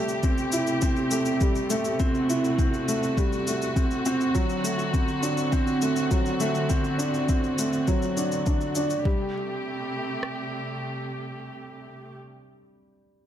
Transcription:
Already playing: C3 G3 A3 G4
0.09 shaker
0.23 C4, kick, shaker
0.38 shaker
0.52 E4, shaker
0.67 shaker
0.81 C4, kick, shaker
0.96 shaker
1.11 A3, shaker
1.25 shaker
1.41 G3, kick, shaker
1.55 shaker
1.70 A3, shaker
1.85 shaker
1.99 C4 F#4, kick, shaker
2.15 shaker
2.29 E4, shaker
2.44 shaker
2.58 C4, kick, shaker
2.74 shaker
2.88 A3, shaker
3.03 shaker
3.17 G3, kick, shaker
3.33 shaker
3.47 A3, shaker
3.62 shaker
3.76 C4, kick, shaker
3.91 shaker
4.05 C4, shaker
4.21 shaker
4.35 D3 F#3 C4, kick, shaker
4.49 shaker
4.64 A3, shaker
4.79 shaker
4.94 C4, kick, shaker
5.08 shaker
5.23 D4, shaker
5.37 shaker
5.52 C4, kick, shaker
5.67 shaker
5.82 A3, shaker
5.96 shaker
6.11 F#3, kick, shaker
6.26 shaker
6.40 A3, shaker
6.55 shaker
6.70 C4, kick, shaker
6.84 shaker
6.98 D4, shaker
7.14 shaker
7.29 C4, kick, shaker
7.44 shaker
7.58 A3, shaker
7.73 shaker
7.87 F#3, kick, shaker
8.02 shaker
8.17 D4, shaker
8.32 shaker
8.46 D4, kick, shaker
8.61 shaker
8.75 D4, shaker
8.90 shaker
9.04 C3 G3 A3 G4, kick
10.23 cross-stick

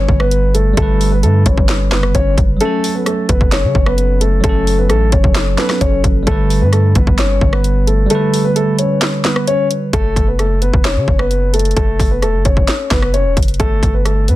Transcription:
Already playing: D3 G3 C#4 B4 C#5
0.09 G1, kick
0.20 B3 B4, cross-stick
0.31 closed hi-hat
0.54 A3 A4, closed hi-hat
0.74 G1 G3 A4, kick, closed hi-hat
0.78 D3 A3
0.82 B4
1.01 open hi-hat
1.12 B3 B4
1.23 G2 A3 A4, closed hi-hat
1.46 G1 C#4 C#5, kick, closed hi-hat
1.58 kick
1.69 snare, clap, closed hi-hat
1.92 F#1 B3 B4, snare, clap
2.03 cross-stick
2.15 G1 C#4 C#5, kick, closed hi-hat
2.38 F#1, kick, closed hi-hat
2.57 F#3, closed hi-hat
2.61 A3 C#4 A4
2.65 A4
2.84 open hi-hat
2.95 B3 B4
3.06 A3 A4, cross-stick, closed hi-hat
3.29 F#1 B3 B4, kick, closed hi-hat
3.41 F#1, kick
3.52 C#4 C#5, snare, clap, closed hi-hat
3.64 C#3
3.75 F#1, kick
3.86 B3 B4, cross-stick
3.98 closed hi-hat
4.21 A3 A4, closed hi-hat
4.40 F#1 F#3 A4, kick, closed hi-hat
4.45 A3 C#4
4.49 A4
4.67 open hi-hat
4.78 B3 B4
4.89 A1 A3 A4, cross-stick, closed hi-hat
5.12 F#1 C#4 C#5, kick, closed hi-hat
5.24 F#1, kick
5.35 snare, clap, closed hi-hat
5.56 F#3 B3 C#4 B4, snare, clap
5.60 A4
5.70 cross-stick, snare
5.81 F#1 C#4 C#5, kick, closed hi-hat
6.04 F#1, kick, closed hi-hat
6.23 G3
6.27 G1 D3 A3 A4, kick, closed hi-hat
6.31 B4
6.50 open hi-hat
6.61 G2 B3 B4
6.73 A3 A4, cross-stick, closed hi-hat
6.95 G1 B3 B4, kick, closed hi-hat
7.07 G1, kick
7.18 C#4 C#5, snare, clap, closed hi-hat
7.41 G1, kick
7.53 B3 B4, cross-stick
7.64 closed hi-hat
7.87 A3 A4, closed hi-hat
8.06 G3 A4, closed hi-hat
8.11 D3 A3
8.15 B4
8.34 open hi-hat
8.44 B3 B4
8.56 A3 A4, closed hi-hat
8.79 C#4 C#5, closed hi-hat
9.02 snare, clap, closed hi-hat
9.25 B3 B4, snare, clap
9.36 cross-stick
9.47 C#4 C#5, closed hi-hat
9.71 closed hi-hat
9.93 F#1 A3 A4, kick, closed hi-hat
10.16 F#1, kick, closed hi-hat
10.28 B3 B4
10.39 A3 A4, cross-stick, closed hi-hat
10.62 B3 B4, closed hi-hat
10.74 F#1, kick
10.85 C#4 C#5, snare, clap, closed hi-hat
10.96 C#3
11.08 F#1, kick
11.19 B3 B4, cross-stick
11.31 closed hi-hat
11.53 A3 A4, closed hi-hat
11.59 closed hi-hat
11.65 closed hi-hat
11.71 closed hi-hat
11.76 F#1 A3 A4, kick, closed hi-hat
12.00 F#1, kick, open hi-hat
12.11 B3 B4
12.22 E1 A3 A4, cross-stick, closed hi-hat
12.34 F#1
12.45 F#1 C#4 C#5, kick, closed hi-hat
12.57 kick
12.68 snare, clap, closed hi-hat
12.91 F#1 B3 B4, kick, snare, clap
13.02 cross-stick
13.14 C#4 C#5, closed hi-hat
13.25 E1
13.37 F#1, kick, closed hi-hat
13.43 closed hi-hat
13.48 closed hi-hat
13.54 closed hi-hat
13.60 G1 A3 A4, kick, closed hi-hat
13.83 G1, kick, closed hi-hat
13.94 B3 B4
14.05 A3 A4, cross-stick, closed hi-hat
14.28 G2 B3 B4, closed hi-hat

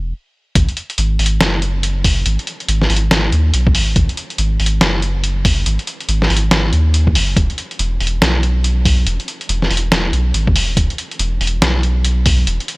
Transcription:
Already playing: E1
0.55 G#1, kick, closed hi-hat
0.69 closed hi-hat
0.77 closed hi-hat
0.90 closed hi-hat
0.98 G#1, closed hi-hat
1.19 G#1, open hi-hat
1.26 closed hi-hat
1.41 F#1, snare, closed hi-hat
1.62 closed hi-hat
1.83 closed hi-hat
2.04 kick, open hi-hat
2.26 G#1, closed hi-hat
2.39 closed hi-hat
2.47 closed hi-hat
2.60 closed hi-hat
2.68 G#1, closed hi-hat
2.82 snare
2.90 G#1, open hi-hat
2.96 closed hi-hat
3.11 G#1, snare, closed hi-hat
3.32 D#2, closed hi-hat
3.54 B1, closed hi-hat
3.67 kick
3.75 G#1, open hi-hat
3.96 G#1, kick, closed hi-hat
4.09 closed hi-hat
4.17 closed hi-hat
4.30 closed hi-hat
4.38 G#1, closed hi-hat
4.60 G#1, open hi-hat
4.66 closed hi-hat
4.81 F#1, snare, closed hi-hat
5.02 closed hi-hat
5.24 closed hi-hat
5.45 kick, open hi-hat
5.66 G#1, closed hi-hat
5.79 closed hi-hat
5.87 closed hi-hat
6.00 closed hi-hat
6.08 G#1, closed hi-hat
6.22 snare
6.30 G#1, open hi-hat
6.37 closed hi-hat
6.51 G#1, snare, closed hi-hat
6.72 D#2, closed hi-hat
6.94 closed hi-hat
7.07 kick
7.15 F#1, open hi-hat
7.37 E1, kick, closed hi-hat
7.50 closed hi-hat
7.58 closed hi-hat
7.71 closed hi-hat
7.79 E1, closed hi-hat
8.00 E1, open hi-hat
8.07 closed hi-hat
8.22 B1, snare, closed hi-hat
8.43 closed hi-hat
8.64 closed hi-hat
8.85 kick, open hi-hat
9.06 E1, closed hi-hat
9.20 closed hi-hat
9.28 closed hi-hat
9.41 closed hi-hat
9.49 E1, closed hi-hat
9.62 snare
9.70 E1, open hi-hat
9.77 closed hi-hat
9.92 E1, snare, closed hi-hat
10.13 B1, closed hi-hat
10.34 G#1, closed hi-hat
10.47 kick
10.56 E1, open hi-hat
10.77 E1, kick, closed hi-hat
10.90 closed hi-hat
10.98 closed hi-hat
11.11 closed hi-hat
11.19 E1, closed hi-hat
11.40 E1, open hi-hat
11.47 closed hi-hat
11.62 B1, snare, closed hi-hat
11.83 closed hi-hat
12.05 closed hi-hat
12.26 kick, open hi-hat
12.47 E1, closed hi-hat
12.60 closed hi-hat
12.68 closed hi-hat

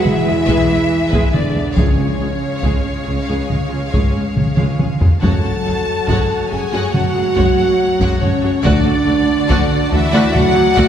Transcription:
Already playing: G#3 G#4 B4 E5
0.02 E1 E2 E3 G#3 E4 G#4 B4 E5, taiko mid
0.24 E2 G#3 E4 G#4
0.45 E1 E2 B4 E5, taiko
0.49 G#3 G#4
0.66 E2 G#3 G#4 B4
1.08 B4 E5
1.12 E2 G#3 G#4, taiko
1.30 E2 D3 G#4 B4 D5
1.34 E1 G#3 D4 G#4, taiko mid
1.49 E4 G#4
1.55 E2 G#3 G#4
1.71 C#5 F5
1.75 C#2 C#3 G#3 C#4 G#4 C#5 F5, taiko
1.93 G#4 C#5
1.99 C#2 G#3 G#4
2.13 F4 G#4
2.20 C#2 G#3 G#4
2.58 C#5 F5
2.62 C#2 G#3 G#4, taiko
3.03 C#2 G#3 F4 G#4
3.08 C#2
3.24 G#3 G#4 C#5 F5
3.29 C#2
3.46 G#3 G#4 C#5, taiko mid
3.50 C#2
3.67 G#3 F4 G#4
3.72 C#2
3.89 G#3 G#4 C#5 F5
3.93 C#2, taiko
4.11 G#3 G#4 C#5
4.16 C#2
4.37 taiko mid
4.55 G#3 G#4 C#5 F5, taiko mid
4.59 C#2
4.76 C#2 G#3 G#4 C#5
4.80 C#2, taiko mid
4.99 C#2 G#3 F4 G#4, taiko low
5.21 F#1 F#2 F#3 G#3 A3 F#4 A4 C#5 F#5 A5, taiko
5.42 F#2 G#3 F#4 A4 C#5
5.63 F#1 F#2 G#3 F#4 G#4 A4
6.06 F#1 F#2 G#3 F#4 C#5 F#5, taiko
6.49 F#1 F#2 G#3 F#4 G#4 A4 G#5
6.71 F#2 G#3 F#4 C#5 F#5
6.92 F#1 F#2 F#3 G#3 F#4 A4 C#5 F#5, taiko mid
7.13 F#2 G#3 F#4 G#4 A4
7.34 F#1 F#2 G#3 F#4 C#5 F#5, taiko
7.57 F#2 G#3 F#4 A4 C#5
8.00 F#2 G#3 F#4 C#5 F#5, taiko
8.20 F#1 F#2 C#3 G#3 C#4 F#4 A4 C#5, taiko mid
8.41 F#2 G#3 F#4 G#4 A4
8.63 D2 D3 A3 D4 F#4 D5 F#5, taiko
8.84 D2 A3 F#4 A4 D5
9.04 D2 A3 F#4 A4
9.47 D2 A3 F#4 D5 F#5, taiko
9.88 D2 E3 A3 E4 F#4 A4 E5
9.93 D2 E5
10.10 D2 A3 F#4 D5 F#5
10.31 D2 A3 F#4 A4 D5 F#5
10.35 D2 F#3, taiko mid
10.52 A3 F#4 A4
10.56 D2
10.73 A3 F#4 D5 F#5
10.77 D2, taiko

